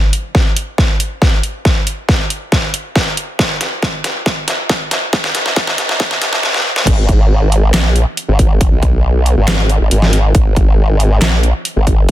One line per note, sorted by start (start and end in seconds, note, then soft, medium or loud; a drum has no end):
0.13 closed hi-hat medium
0.35 kick loud
0.35 snare soft
0.56 closed hi-hat medium
0.78 kick medium
0.78 snare medium
1.00 closed hi-hat medium
1.22 kick medium
1.22 snare medium
1.43 closed hi-hat medium
1.65 kick loud
1.65 snare medium
1.87 closed hi-hat medium
2.09 kick loud
2.09 snare medium
2.30 closed hi-hat medium
2.52 kick medium
2.52 snare medium
2.74 closed hi-hat medium
2.96 kick loud
2.96 snare medium
3.17 closed hi-hat medium
3.39 kick medium
3.39 snare medium
3.61 snare medium
3.61 closed hi-hat medium
3.83 kick loud
3.83 snare medium
4.04 snare medium
4.04 closed hi-hat medium
4.26 kick loud
4.26 snare medium
4.48 snare medium
4.48 closed hi-hat medium
4.69 kick loud
4.69 snare medium
4.91 snare medium
4.91 closed hi-hat medium
5.13 kick loud
5.13 snare medium
5.24 snare medium
5.35 snare loud
5.35 closed hi-hat medium
5.46 snare medium
5.56 kick loud
5.56 snare loud
5.67 snare medium
5.78 snare loud
5.78 closed hi-hat medium
5.89 snare medium
6.00 kick loud
6.00 snare loud
6.11 snare medium
6.22 snare loud
6.22 closed hi-hat medium
6.33 snare loud
6.43 snare medium
6.54 snare medium
6.76 snare medium
6.87 7.72 G#1 loud
6.87 kick loud
6.87 closed hi-hat medium
6.87 crash loud
7.09 kick loud
7.09 closed hi-hat medium
7.52 closed hi-hat medium
7.74 8.05 A#1 loud
7.74 snare loud
7.74 clap medium
7.74 closed hi-hat medium
7.96 closed hi-hat medium
8.17 closed hi-hat medium
8.28 8.70 G#1 loud
8.39 kick medium
8.39 closed hi-hat medium
8.61 kick loud
8.61 closed hi-hat medium
8.72 9.35 B1 loud
8.83 kick loud
8.83 closed hi-hat medium
9.26 closed hi-hat medium
9.37 9.79 G#1 medium
9.48 snare loud
9.48 clap medium
9.48 closed hi-hat medium
9.69 closed hi-hat medium
9.81 9.90 G#1 loud
9.91 10.33 G#1 medium
9.91 closed hi-hat medium
10.02 snare soft
10.13 closed hi-hat medium
10.35 11.20 G#1 loud
10.35 kick loud
10.35 closed hi-hat medium
10.56 kick loud
10.56 closed hi-hat medium
11.00 closed hi-hat soft
11.22 11.53 A#1 loud
11.22 snare loud
11.22 clap loud
11.22 closed hi-hat medium
11.43 closed hi-hat medium
11.65 closed hi-hat medium
11.76 12.11 G#1 loud
11.87 kick medium
11.87 closed hi-hat medium